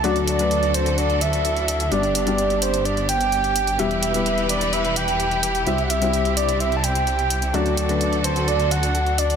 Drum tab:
HH |xxxxxxxxxxxxxxxx|xxxxxxxxxxxxxxxx|xxxxxxxxxxxxxxxx|xxxxxxxxxxxxxxxx|

HH |xxxxxxxxxxxxxxxx|